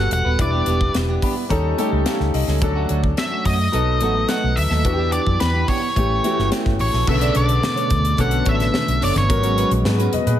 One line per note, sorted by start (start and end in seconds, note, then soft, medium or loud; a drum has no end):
0.00 0.38 G3 medium
0.00 0.41 B3 medium
0.00 0.41 F#4 medium
0.00 0.40 A4 medium
0.11 0.22 E1 medium
0.11 0.38 F#5 medium
0.11 muted clean electric guitar stroke soft
0.11 closed hi-hat medium
0.25 0.36 D#1 medium
0.25 0.38 B3 soft
0.25 0.39 F#4 soft
0.25 0.40 B4 medium
0.38 0.61 E1 medium
0.38 1.43 G3 medium
0.38 1.43 D4 medium
0.38 1.44 E4 medium
0.38 1.44 B4 medium
0.38 0.92 D5 medium
0.38 muted clean electric guitar stroke soft
0.38 kick medium
0.38 closed hi-hat medium
0.53 0.66 B3 medium
0.53 0.67 D4 medium
0.53 0.67 G4 medium
0.66 0.89 E1 medium
0.66 0.83 B3 medium
0.66 0.81 D4 medium
0.66 0.80 G4 medium
0.66 closed hi-hat medium
0.81 muted clean electric guitar stroke soft
0.81 kick medium
0.94 1.17 E1 medium
0.94 muted clean electric guitar stroke soft
0.94 snare loud
0.94 closed hi-hat medium
1.09 1.21 B3 medium
1.09 1.22 D4 medium
1.09 1.23 G4 medium
1.22 1.43 B3 medium
1.22 1.36 D4 medium
1.22 1.35 G4 medium
1.22 1.49 B5 medium
1.22 kick medium
1.22 open hi-hat medium
1.36 muted clean electric guitar stroke soft
1.49 1.72 D#2 medium
1.49 1.76 G3 medium
1.49 1.76 C#4 medium
1.49 1.77 D#4 medium
1.49 1.77 A4 medium
1.49 1.76 A#5 medium
1.49 kick medium
1.49 closed hi-hat medium
1.64 muted clean electric guitar stroke soft
1.78 2.57 G3 medium
1.78 1.99 A3 medium
1.78 2.57 C#4 medium
1.78 1.93 C#4 medium
1.78 2.57 D#4 medium
1.78 1.91 G4 medium
1.78 2.57 A4 medium
1.78 2.04 A5 medium
1.78 closed hi-hat medium
1.92 2.03 C#2 medium
1.92 muted clean electric guitar stroke soft
2.06 2.27 A3 medium
2.06 2.20 C#4 medium
2.06 2.19 G4 medium
2.06 2.32 F5 medium
2.06 snare medium
2.06 closed hi-hat medium
2.20 2.31 C#2 medium
2.20 muted clean electric guitar stroke soft
2.20 snare soft
2.34 2.45 C2 medium
2.34 2.60 D#5 medium
2.34 muted clean electric guitar stroke soft
2.34 open hi-hat medium
2.48 2.59 C#2 medium
2.48 2.60 A3 soft
2.48 2.61 C#4 medium
2.48 2.62 A4 medium
2.48 snare soft
2.61 2.84 D2 loud
2.61 3.66 F#3 medium
2.61 3.67 C#4 medium
2.61 3.67 D4 medium
2.61 3.67 A4 medium
2.61 muted clean electric guitar stroke soft
2.61 kick loud
2.61 closed hi-hat medium
2.76 2.87 A3 medium
2.76 2.88 C#4 medium
2.76 2.89 F#4 medium
2.89 3.12 D2 medium
2.89 3.05 A3 medium
2.89 3.03 C#4 medium
2.89 3.02 F#4 medium
2.89 closed hi-hat medium
3.03 muted clean electric guitar stroke soft
3.03 kick medium
3.17 3.46 E5 medium
3.17 muted clean electric guitar stroke soft
3.17 snare medium
3.17 closed hi-hat medium
3.31 3.44 A3 medium
3.31 3.45 C#4 medium
3.31 3.46 F#4 medium
3.45 3.68 F#2 medium
3.45 3.66 A3 medium
3.45 3.59 C#4 medium
3.45 3.58 F#4 medium
3.45 4.32 D#5 medium
3.45 kick medium
3.45 open hi-hat medium
3.59 muted clean electric guitar stroke soft
3.72 4.01 B1 medium
3.72 3.99 F#3 medium
3.72 3.99 B3 medium
3.72 3.99 D#4 medium
3.72 4.00 A4 medium
3.72 closed hi-hat medium
3.88 muted clean electric guitar stroke soft
4.01 4.23 A1 medium
4.01 4.79 F#3 medium
4.01 4.22 A3 medium
4.01 4.80 B3 medium
4.01 4.80 D#4 medium
4.01 4.16 D#4 medium
4.01 4.14 F#4 medium
4.01 4.80 A4 medium
4.01 closed hi-hat medium
4.15 muted clean electric guitar stroke soft
4.29 4.50 A3 medium
4.29 4.42 D#4 medium
4.29 4.41 F#4 medium
4.29 4.58 F#5 loud
4.29 snare medium
4.29 closed hi-hat medium
4.43 4.54 B1 medium
4.43 muted clean electric guitar stroke soft
4.56 4.68 D2 medium
4.56 5.12 E5 medium
4.56 muted clean electric guitar stroke soft
4.56 open hi-hat medium
4.70 4.85 D#2 medium
4.70 4.84 A3 medium
4.70 4.85 D#4 medium
4.70 4.85 A4 medium
4.70 snare soft
4.85 5.18 E2 medium
4.85 5.89 E3 medium
4.85 5.90 B3 medium
4.85 5.90 D4 medium
4.85 4.92 F#4 medium
4.85 muted clean electric guitar stroke soft
4.85 kick loud
4.85 closed hi-hat medium
4.92 5.93 G4 medium
4.99 5.11 B3 medium
4.99 5.12 D4 medium
4.99 5.13 G4 medium
5.12 5.29 B3 medium
5.12 5.27 D4 medium
5.12 5.26 G4 medium
5.12 5.38 D5 medium
5.12 closed hi-hat medium
5.27 5.38 F#2 medium
5.27 muted clean electric guitar stroke soft
5.27 kick medium
5.40 5.63 E2 medium
5.40 5.69 B4 medium
5.40 snare medium
5.40 closed hi-hat medium
5.54 5.66 B3 soft
5.54 5.67 D4 medium
5.54 5.68 G4 medium
5.68 5.89 B3 medium
5.68 5.81 D4 medium
5.68 5.80 G4 medium
5.68 6.48 C#5 medium
5.68 kick medium
5.68 open hi-hat medium
5.81 muted clean electric guitar stroke soft
5.96 6.18 A1 medium
5.96 6.22 E3 medium
5.96 6.22 A3 medium
5.96 6.23 C#4 medium
5.96 6.23 G4 medium
5.96 kick medium
5.96 closed hi-hat medium
6.10 muted clean electric guitar stroke soft
6.23 7.03 E3 medium
6.23 6.44 A3 medium
6.23 7.03 A3 medium
6.23 6.38 C#4 medium
6.23 7.03 C#4 medium
6.23 6.31 F#4 medium
6.23 6.37 G4 medium
6.23 closed hi-hat medium
6.32 7.06 G4 medium
6.38 6.49 G1 medium
6.38 muted clean electric guitar stroke soft
6.38 snare soft
6.52 6.72 A3 medium
6.52 6.66 C#4 medium
6.52 6.65 G4 medium
6.52 snare medium
6.52 closed hi-hat medium
6.66 6.77 G1 medium
6.66 muted clean electric guitar stroke soft
6.66 kick medium
6.66 snare soft
6.79 6.91 A1 medium
6.79 7.08 C#5 medium
6.79 muted clean electric guitar stroke soft
6.79 open hi-hat medium
6.93 7.04 A#1 medium
6.93 7.07 A3 soft
6.93 7.07 C#4 soft
6.93 7.07 A4 medium
6.93 snare soft
7.07 7.29 B1 medium
7.07 9.28 B2 medium
7.07 8.12 C#3 medium
7.07 8.12 D3 medium
7.07 9.27 A3 medium
7.07 10.40 B3 medium
7.07 8.12 B3 medium
7.07 8.13 A4 medium
7.07 7.34 E5 medium
7.07 muted clean electric guitar stroke soft
7.07 kick loud
7.07 crash medium
7.07 muted conga soft
7.21 7.34 D4 medium
7.21 7.35 A4 medium
7.21 7.36 D5 medium
7.21 closed hi-hat medium
7.35 7.57 B1 loud
7.35 7.51 D4 medium
7.35 7.49 A4 medium
7.35 7.48 C#5 medium
7.35 8.22 D5 medium
7.35 closed hi-hat medium
7.49 muted clean electric guitar stroke soft
7.49 closed hi-hat soft
7.62 muted clean electric guitar stroke soft
7.62 snare loud
7.62 high conga medium
7.76 7.89 D4 medium
7.76 7.89 A4 medium
7.76 7.90 C#5 medium
7.76 closed hi-hat soft
7.90 8.13 D2 medium
7.90 muted clean electric guitar stroke soft
7.90 kick medium
7.90 closed hi-hat medium
7.90 low conga medium
8.04 muted clean electric guitar stroke soft
8.04 closed hi-hat soft
8.17 8.40 B1 medium
8.17 9.23 D3 medium
8.17 9.23 B3 medium
8.17 9.23 C#4 medium
8.17 9.23 A4 medium
8.17 8.48 F#5 loud
8.17 muted clean electric guitar stroke soft
8.17 kick medium
8.17 closed hi-hat medium
8.17 muted conga soft
8.31 muted clean electric guitar stroke soft
8.31 closed hi-hat soft
8.45 8.68 A1 medium
8.45 8.66 D4 medium
8.45 8.59 A4 medium
8.45 8.58 C#5 medium
8.45 kick medium
8.45 closed hi-hat medium
8.45 muted conga soft
8.49 9.04 E5 medium
8.59 muted clean electric guitar stroke soft
8.59 snare soft
8.59 closed hi-hat soft
8.73 muted clean electric guitar stroke soft
8.73 snare medium
8.73 high conga medium
8.88 8.99 B1 medium
8.88 muted clean electric guitar stroke medium
8.88 closed hi-hat medium
9.01 9.13 F#1 medium
9.01 9.22 D4 medium
9.01 9.15 A4 medium
9.01 9.14 C#5 medium
9.01 9.17 D5 medium
9.01 open hi-hat medium
9.15 9.30 G1 medium
9.15 9.68 C#5 medium
9.15 muted clean electric guitar stroke soft
9.15 snare soft
9.15 closed hi-hat medium
9.15 high conga medium
9.29 9.63 G#1 medium
9.29 10.34 F#3 medium
9.29 10.40 F#3 medium
9.29 10.40 G#3 medium
9.29 10.34 B3 medium
9.29 10.34 C#4 medium
9.29 9.86 A#4 medium
9.29 muted clean electric guitar stroke soft
9.29 kick loud
9.29 closed hi-hat medium
9.29 muted conga soft
9.43 9.56 C#4 medium
9.43 9.57 F#4 medium
9.43 9.58 C#5 medium
9.43 closed hi-hat medium
9.57 9.74 C#4 medium
9.57 9.71 F#4 medium
9.57 9.70 B4 medium
9.57 closed hi-hat medium
9.71 9.82 A#1 medium
9.71 muted clean electric guitar stroke soft
9.71 closed hi-hat soft
9.84 10.07 G#2 loud
9.84 10.12 G#4 medium
9.84 10.12 B4 medium
9.84 muted clean electric guitar stroke soft
9.84 snare medium
9.84 high conga medium
9.99 10.13 C#4 medium
9.99 10.13 F#4 medium
9.99 10.13 B4 medium
9.99 closed hi-hat soft
10.13 10.25 B4 medium
10.13 10.27 D#5 medium
10.13 muted clean electric guitar stroke soft
10.13 closed hi-hat medium
10.13 low conga medium
10.26 10.38 A#2 medium
10.26 10.40 G#4 medium
10.26 10.40 B4 medium
10.26 muted clean electric guitar stroke soft
10.26 closed hi-hat medium